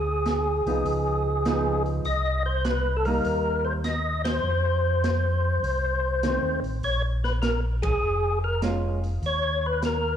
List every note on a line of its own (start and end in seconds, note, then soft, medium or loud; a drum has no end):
0.00 0.62 D2 medium
0.00 1.83 G#4 medium
0.26 snare medium
0.26 closed hi-hat soft
0.66 0.84 C2 medium
0.66 1.42 F3 medium
0.66 1.42 B3 medium
0.66 1.42 D#4 medium
0.66 open hi-hat soft
0.85 2.01 C#2 medium
0.85 open hi-hat soft
1.45 2.05 F3 medium
1.45 2.06 B3 medium
1.45 2.06 D#4 medium
1.45 snare medium
1.45 closed hi-hat soft
1.86 open hi-hat soft
2.05 3.21 C2 medium
2.05 2.43 D#5 loud
2.05 open hi-hat soft
2.46 2.65 C5 medium
2.65 2.97 B4 medium
2.65 snare medium
2.65 closed hi-hat soft
2.97 3.06 A4 medium
3.05 3.81 G3 medium
3.05 3.81 A#3 medium
3.05 3.81 D#4 medium
3.05 3.67 A#4 medium
3.05 open hi-hat soft
3.25 4.40 D#2 medium
3.25 open hi-hat soft
3.65 3.73 C5 medium
3.84 4.22 D#5 medium
3.84 snare medium
3.84 closed hi-hat soft
4.24 6.60 C5 medium
4.24 snare medium
4.24 ride medium
4.44 5.59 F2 medium
5.04 snare medium
5.04 closed hi-hat medium
5.63 6.39 C2 medium
5.63 open hi-hat soft
6.23 6.60 D#3 medium
6.23 6.60 A3 medium
6.23 6.60 C4 medium
6.23 snare medium
6.23 closed hi-hat medium
6.42 6.61 D#2 medium
6.63 6.81 A1 medium
6.63 open hi-hat soft
6.82 7.99 A#1 medium
6.82 7.02 C#5 loud
6.82 open hi-hat soft
7.24 7.33 B4 medium
7.24 snare soft
7.42 7.60 A#4 medium
7.42 snare medium
7.42 closed hi-hat soft
7.82 8.39 G#4 loud
7.82 kick medium
7.82 ride medium
8.03 9.19 F1 medium
8.44 8.62 A#4 medium
8.62 8.99 G#3 medium
8.62 9.00 C#4 medium
8.62 9.00 F4 medium
8.62 snare medium
8.62 closed hi-hat medium
9.04 open hi-hat soft
9.22 10.17 D#2 medium
9.22 open hi-hat soft
9.26 9.66 C#5 loud
9.66 9.83 B4 medium
9.82 10.17 A#4 medium
9.82 snare medium
9.82 closed hi-hat medium